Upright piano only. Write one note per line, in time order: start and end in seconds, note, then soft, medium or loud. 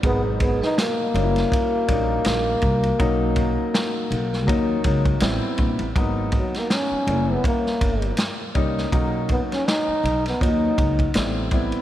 0.03 1.15 B2 medium
0.03 1.14 F#3 medium
0.03 1.14 D#4 medium
0.03 1.14 A#4 medium
1.15 1.78 G3 medium
1.15 1.78 A#3 medium
1.15 1.79 C#4 medium
1.15 1.23 D#4 medium
1.22 1.82 E4 medium
1.88 2.84 G3 medium
1.88 2.84 A#3 medium
1.88 2.84 C#4 medium
1.88 2.84 D#4 medium
2.99 4.25 F#3 medium
2.99 4.25 A#3 medium
2.99 4.25 C#4 medium
2.99 4.25 D#4 loud
4.47 4.79 F#3 medium
4.47 4.79 A#3 medium
4.47 4.80 C#4 medium
4.47 4.80 D#4 medium
4.84 5.21 F#3 medium
4.84 5.22 A#3 medium
4.84 5.22 C#4 medium
4.84 5.22 D#4 medium
5.21 5.85 G3 medium
5.21 5.85 B3 medium
5.21 5.86 C4 medium
5.21 5.86 E4 loud
5.96 7.07 F#3 medium
5.96 7.06 A#3 medium
5.96 7.07 B3 medium
5.96 7.07 D#4 medium
7.07 8.32 G3 medium
7.07 8.33 A#3 medium
7.07 8.33 C#4 medium
7.07 8.33 E4 medium
8.55 8.87 G3 medium
8.55 8.87 A#3 medium
8.55 8.87 C#4 medium
8.55 8.87 D#4 medium
8.92 10.18 F#3 medium
8.92 10.18 A#3 medium
8.92 10.18 C#4 medium
8.92 10.18 D#4 medium
10.41 10.48 F3 medium
10.41 11.04 A#3 medium
10.41 11.05 C#4 medium
10.41 11.05 D#4 medium
10.48 11.08 F#3 medium
11.15 11.47 G3 medium
11.15 11.47 B3 medium
11.15 11.47 C4 medium
11.15 11.47 E4 medium
11.52 11.82 G3 medium
11.52 11.82 B3 medium
11.52 11.82 C4 medium
11.52 11.82 E4 medium